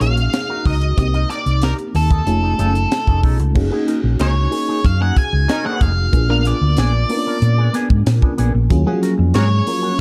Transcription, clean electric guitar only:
0.17 muted clean electric guitar stroke soft
0.33 muted clean electric guitar stroke soft
0.49 0.63 D#4 medium
0.49 0.63 F#4 medium
0.49 0.63 A#4 medium
0.66 0.76 D#4 medium
0.66 0.76 F#4 medium
0.66 0.77 A#4 medium
0.81 muted clean electric guitar stroke soft
0.98 muted clean electric guitar stroke soft
1.13 1.28 D#4 medium
1.13 1.28 A#4 medium
1.13 1.27 D#5 medium
1.30 1.41 D#4 medium
1.30 1.41 A#4 medium
1.30 1.41 D5 medium
1.46 muted clean electric guitar stroke soft
1.62 1.76 D#4 medium
1.62 1.76 A#4 medium
1.62 1.76 D5 medium
1.78 muted clean electric guitar stroke soft
1.95 muted clean electric guitar stroke soft
2.10 2.22 D#4 soft
2.10 2.21 A#4 soft
2.10 2.21 D#5 medium
2.27 muted clean electric guitar stroke soft
2.42 2.54 C#4 medium
2.42 2.54 D#4 medium
2.42 2.53 A4 medium
2.59 2.72 C#4 medium
2.59 2.73 D#4 medium
2.59 2.73 A4 medium
2.91 muted clean electric guitar stroke soft
3.07 3.18 C#4 soft
3.07 3.18 D#4 medium
3.07 3.18 A4 medium
3.23 3.37 C#4 medium
3.23 3.37 D#4 medium
3.23 3.37 A4 medium
3.56 muted clean electric guitar stroke soft
3.72 3.86 A#3 medium
3.72 3.85 D#4 medium
3.72 3.85 G#4 medium
3.87 3.98 A#3 medium
3.87 3.99 D#4 medium
3.87 3.99 A#4 medium
4.04 muted clean electric guitar stroke soft
4.20 4.33 A#3 medium
4.20 4.34 D#4 medium
4.20 4.34 G#4 medium
4.36 muted clean electric guitar stroke soft
4.52 muted clean electric guitar stroke soft
4.68 4.80 A#3 soft
4.68 4.79 D#4 medium
4.68 4.79 G#4 medium
4.85 muted clean electric guitar stroke soft
5.01 5.15 A#3 medium
5.01 5.14 D#4 medium
5.01 5.14 G#4 medium
5.33 muted clean electric guitar stroke soft
5.49 muted clean electric guitar stroke soft
5.65 5.79 A#3 medium
5.65 5.79 D#4 medium
5.65 5.78 G#4 medium
5.80 5.91 A#3 medium
5.80 5.92 D#4 medium
5.80 5.92 G#4 medium
5.97 muted clean electric guitar stroke soft
6.13 muted clean electric guitar stroke soft
6.29 6.43 B3 medium
6.29 6.43 D4 medium
6.29 6.43 A#4 medium
6.45 6.56 B3 medium
6.45 6.56 D4 medium
6.45 6.56 G#4 medium
6.62 muted clean electric guitar stroke soft
6.77 6.91 B3 medium
6.77 6.91 D4 medium
6.77 6.92 G#4 medium
6.94 muted clean electric guitar stroke soft
7.10 muted clean electric guitar stroke soft
7.26 7.37 B3 medium
7.26 7.37 D4 medium
7.26 7.36 A#4 medium
7.42 muted clean electric guitar stroke soft
7.58 7.69 B3 medium
7.58 7.69 D4 medium
7.58 7.68 G#4 medium
7.73 7.87 B3 medium
7.73 7.88 D4 medium
7.73 7.88 G#4 medium
8.06 muted clean electric guitar stroke soft
8.22 8.33 B3 soft
8.22 8.33 D4 medium
8.22 8.32 G#4 medium
8.38 8.51 B3 medium
8.38 8.52 D4 medium
8.38 8.52 G#4 medium
8.54 muted clean electric guitar stroke soft
8.70 muted clean electric guitar stroke soft
8.86 9.00 C#4 medium
8.86 9.00 F#4 medium
8.86 9.00 G#4 medium
9.02 9.13 C#4 medium
9.02 9.13 F#4 medium
9.02 9.13 A#4 medium
9.18 muted clean electric guitar stroke soft
9.34 9.48 C#4 medium
9.34 9.48 F#4 medium
9.34 9.48 G#4 loud
9.50 muted clean electric guitar stroke soft
9.67 muted clean electric guitar stroke soft
9.82 9.93 C#4 soft
9.82 9.93 F#4 medium
9.82 9.93 G#4 medium

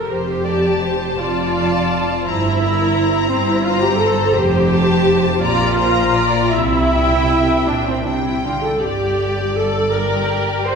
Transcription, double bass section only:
0.09 1.07 F1 soft
1.19 2.13 F1 soft
2.25 3.18 G1 medium
3.30 4.21 G1 medium
4.34 5.29 F1 medium
5.41 6.39 A#1 medium
6.52 7.53 C2 medium
7.68 8.69 C2 soft
8.82 10.75 G1 soft

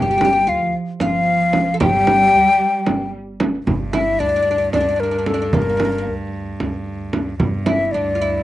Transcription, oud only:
0.02 0.10 G4 medium
0.11 0.17 G4 medium
0.18 0.24 G4 medium
0.25 0.31 G4 medium
0.33 0.40 G4 medium
0.47 0.72 F4 medium
1.01 1.74 F4 medium
1.74 1.80 A4 medium
1.80 3.09 G4 medium
3.93 4.20 E4 medium
4.20 4.28 D4 medium
4.29 4.35 D4 soft
4.36 4.41 D4 medium
4.42 4.50 D4 medium
4.51 4.57 D4 medium
4.58 4.66 D4 soft
4.74 4.79 D4 medium
4.81 4.87 D4 medium
4.89 4.95 D4 medium
4.96 5.02 D4 soft
5.03 5.10 D4 soft
5.11 5.17 D4 soft
5.19 5.25 D4 soft
5.26 5.33 D4 soft
5.34 5.41 D4 medium
5.42 5.49 D4 soft
5.54 5.60 A#3 medium
5.62 5.68 A#3 soft
5.69 5.76 A#3 soft
5.77 5.84 A#3 soft
5.85 5.91 A#3 soft
5.92 5.97 A#3 soft
5.98 6.06 A#3 medium
7.66 7.94 E4 medium
7.94 8.15 D4 medium
8.15 8.21 F4 soft
8.22 8.43 E4 medium

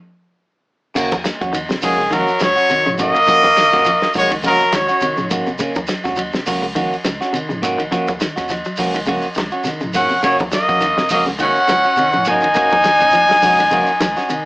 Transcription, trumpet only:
1.84 2.15 G#4 loud
2.13 2.42 A#4 medium
2.43 2.96 C#5 loud
3.02 4.12 D#5 loud
4.18 4.30 C#5 loud
4.46 4.72 A#4 loud
4.76 5.29 C#5 loud
9.96 10.23 F#5 medium
10.24 10.37 C#5 medium
10.55 11.08 D#5 loud
11.11 11.24 D#5 medium
11.41 12.23 F#5 loud
12.28 14.45 G#5 loud

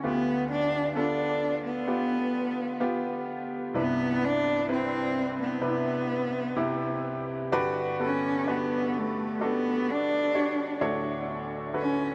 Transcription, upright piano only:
0.04 3.72 D2 medium
0.04 3.71 D3 medium
0.04 0.92 B3 medium
0.04 0.92 F4 medium
0.04 0.92 G4 medium
0.95 1.84 B3 medium
0.95 1.84 F4 medium
0.95 1.84 A4 medium
1.88 2.77 B3 medium
1.88 2.77 F4 medium
1.88 2.77 G4 medium
2.80 3.70 B3 medium
2.80 3.70 F4 medium
2.80 3.70 G4 medium
3.74 7.49 C2 medium
3.74 7.49 G2 medium
3.74 4.64 C3 medium
3.74 4.64 E4 medium
3.74 4.64 B4 medium
4.68 5.58 C4 medium
4.68 5.58 E4 medium
4.68 5.58 B4 medium
5.61 6.53 C3 medium
5.61 5.69 D4 soft
5.61 6.53 B4 medium
5.68 6.55 E4 medium
6.56 7.48 C3 medium
6.56 7.48 E4 medium
6.56 7.48 G4 medium
7.52 10.78 G2 medium
7.52 10.78 D3 medium
7.52 7.98 D4 loud
7.52 7.98 F#4 loud
7.52 7.98 G4 loud
7.52 7.98 B4 loud
7.99 8.45 B3 medium
7.99 8.45 F#4 medium
7.99 8.45 G4 medium
7.99 8.45 A4 medium
8.47 9.37 D4 medium
8.47 9.37 F#4 medium
8.47 9.37 G4 medium
8.47 9.37 B4 medium
9.41 10.30 D4 medium
9.41 10.30 F#4 medium
9.41 10.30 G4 medium
9.41 10.30 A4 medium
10.34 10.80 D4 medium
10.34 10.80 F#4 medium
10.34 10.82 G4 medium
10.34 10.80 C#5 medium
10.81 12.15 D2 medium
10.81 12.15 A2 medium
10.81 11.70 D4 medium
10.81 11.70 F#4 medium
10.81 11.71 A4 medium
10.81 11.70 C#5 medium
11.74 12.15 D3 medium
11.74 12.15 F#4 medium
11.74 12.15 A4 medium
11.74 12.15 B4 medium

